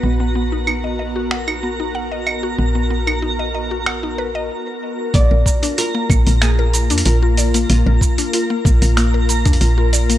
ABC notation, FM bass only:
X:1
M:4/4
L:1/16
Q:1/4=94
K:none
V:1 name="FM bass" clef=bass
_B,,,16 | _B,,,12 z4 | _B,,, B,,, z4 B,,, B,,,4 F,, B,,,4 | _B,,, B,,, z4 B,,, B,,,4 F,, B,,,4 |]